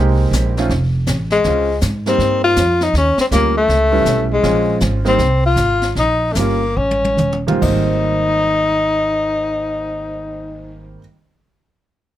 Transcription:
Already playing: C2 G#3 A#3 C4 D#4 G4
0.31 A#1, snare, hi-hat pedal
0.57 A3 C4 C#4 D#4 F4, snare
0.69 F1, brush sweep, snare
1.06 A1, snare, hi-hat pedal
1.30 G#3, snare
1.44 C#2 G#3 C4 C#4 F4, brush sweep, snare
1.81 G#2, snare, hi-hat pedal
2.06 G3 A#3 C4 D#4, snare
2.18 G2, brush sweep, snare
2.44 F4
2.56 F2, snare, hi-hat pedal
2.81 D#4, snare
2.94 D#2 C#4, brush sweep, snare
3.18 C4, muted upright bass stroke, snare
3.31 D2 G3 A#3 C#4 F4, snare, hi-hat pedal
3.57 A3
3.68 C#2, brush sweep, snare
3.91 G3 B3 C#4 E4
4.05 B1, snare, hi-hat pedal
4.33 G#3
4.43 A#1 G#3 C4 C#4 F4, brush sweep, snare
4.80 G#1, snare, hi-hat pedal
5.05 G3 A#3 C4 D#4, snare
5.19 C2, brush sweep, snare
5.46 F4
5.56 G#1, snare, hi-hat pedal
5.82 snare
5.95 A#1 D#4, brush sweep, snare
6.32 G1 A3, snare, hi-hat pedal
6.37 G3 A#3 C#4 F4
6.77 A1 C#4
6.91 high tom
7.04 high tom
7.17 E1, hi-hat pedal, mid tom
7.32 mid tom
7.47 G#2 G3 A#3 C4 F4, mid tom
7.61 G#1 G#2 D#3 G3 A#3 C4 D#4, kick, crash

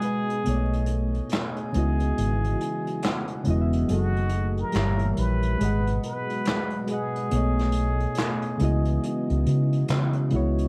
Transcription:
Already playing: B2 G#3 F#4 G#4 B4 D#5 F#5
0.00 G#3 G#4, closed hi-hat
0.04 B4 D#5 G#5
0.30 closed hi-hat
0.44 B1 B2 A3 B3 D#5, closed hi-hat
0.49 C#5 D5
0.57 D#5
0.73 closed hi-hat
0.86 closed hi-hat
1.14 closed hi-hat
1.29 G#4, finger snap, snare, closed hi-hat
1.34 clap
1.56 closed hi-hat
1.72 C#2 C#3 E3 G#3 B3 E4 F#4, closed hi-hat
1.77 F#4 D#5
2.00 closed hi-hat
2.18 G#1, closed hi-hat
2.44 closed hi-hat
2.60 G#5, closed hi-hat
2.87 closed hi-hat
3.02 F#5, finger snap, snare, clap, closed hi-hat
3.28 closed hi-hat
3.44 E1 C#3 G#3 B3 E4, closed hi-hat
3.49 F#4 D#5
3.61 E5
3.73 closed hi-hat
3.86 F#1 D#3 F#3 A3 F#4 G#4 G#5, closed hi-hat
3.91 F#4 A4 D#5
4.16 closed hi-hat
4.29 closed hi-hat
4.57 A#4, closed hi-hat
4.72 G1 A#2 E3 G3 G4 A#4, finger snap, snare, closed hi-hat
4.77 C#5 E5, clap
4.99 closed hi-hat
5.17 A#1 B4, closed hi-hat
5.42 closed hi-hat
5.58 G#1 B2 G#3 F#4 G#4 B4, closed hi-hat
5.63 D#5 F#5
5.87 closed hi-hat
6.03 B4, closed hi-hat
6.30 closed hi-hat
6.45 finger snap, snare, clap, closed hi-hat
6.70 closed hi-hat
6.87 G#3 G#4 B4, closed hi-hat
6.92 D#5 F#5
7.15 closed hi-hat
7.30 B1 B2 A3 B3 D#5, closed hi-hat
7.35 C#5 D#5
7.59 snare, closed hi-hat
7.72 closed hi-hat
8.00 closed hi-hat
8.15 finger snap, snare, closed hi-hat
8.19 clap
8.42 closed hi-hat
8.58 C#2 C#3 E3 G#3 B3 F#4, closed hi-hat
8.62 E4 F#4 D#5
8.85 closed hi-hat
9.03 closed hi-hat
9.30 C#2, closed hi-hat
9.46 C#3, closed hi-hat
9.72 closed hi-hat
9.88 C#3, finger snap, snare, clap, closed hi-hat
10.13 closed hi-hat
10.30 C#2 C#3 G#3 B3 E4, closed hi-hat
10.35 F#4 C#5
10.58 closed hi-hat

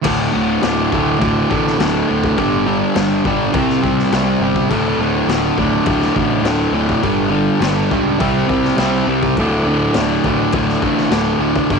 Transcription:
0.03 D1 D2 A2 D3, kick, crash
0.33 D1 D2 A2 D3
0.62 D1 D2 A2 D3, snare, crash
0.92 D1 D2 A2 D3, kick
1.19 D1 D2 A2 D3, kick, crash
1.50 A1 D2 A2 D3, kick
1.67 snare
1.80 D1 D2 A2 D3, snare, crash
2.09 D1 D2 A2 D3
2.24 kick
2.38 G1 G2 D3 G3, kick, crash
2.66 G2 D3 G3
2.95 G1 G2 D3 G3, snare, crash
3.25 G1 G2 D3 G3, kick
3.53 C2 C3 G3 C4, kick, crash
3.69 snare
3.82 C2 C3 G3 C4, kick
3.99 snare
4.11 C2 C3 G3 C4, snare, crash
4.40 G1 C3 G3 C4
4.56 kick
4.70 D1 D2 A2 D3, kick, crash
4.98 D1 D2 A2 D3
5.26 D1 D2 A2, snare, crash
5.31 D3
5.58 D1 D2 A2 D3, kick
5.86 D1 D2 A2 D3, kick, crash
6.02 snare
6.16 A1 D2 A2 D3, kick
6.42 D1 D2 A2, snare, crash
6.47 D3
6.71 D1 D2 A2 D3
6.89 kick
7.03 G1 G2 D3 G3, kick, crash
7.30 G2 D3 G3
7.60 G1 G2 D3 G3, snare, crash
7.91 C#2 G2 D3 G3, kick
8.19 C2 C3 G3 C4, kick, crash
8.48 C2 C3 G3 C4, kick
8.65 snare
8.78 C2 C3 G3 C4, snare, crash
9.07 C2 C3 G3 C4
9.23 kick
9.37 D1 D2 A2 D3, kick, crash
9.64 D1 D2 A2
9.68 D3
9.94 D1 D2 A2, snare, crash
9.98 D3
10.24 D1 D2 A2 D3, kick
10.52 D1 D2 A2 D3, kick, crash
10.69 snare
10.82 A1 D2 A2 D3, kick
10.98 snare
11.10 D1 D2 A2 D3, snare, crash
11.39 D1 D2 A2 D3
11.56 kick
11.70 G1 G2 D3 G3, kick, crash

